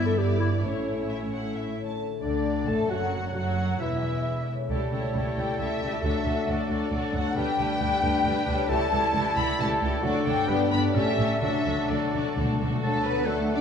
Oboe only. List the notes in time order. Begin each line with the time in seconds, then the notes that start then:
2.21 D5
2.68 A5
2.90 F#5
3.34 F#5
3.80 E5
4.70 A4
7.36 B4
8.69 A4
10.48 B4
10.95 A4
12.84 A5
13.26 F#5